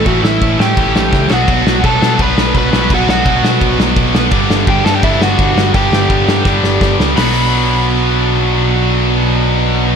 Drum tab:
CC |x-x-x---|x-x-x-x-|x-x-x-x-|x-x-x-x-|
HH |--------|--------|--------|--------|
SD |-o-o-ooo|-o-o-o-o|-o-o-o-o|-o-o-o-o|
BD |o-o-o-o-|o-o-o-o-|o-o-o-o-|o-o-o-o-|

CC |x-x-----|--------|--------|
HH |--------|o-------|--------|
SD |-o-ooooo|o-------|--------|
BD |o-o-o-o-|--------|--------|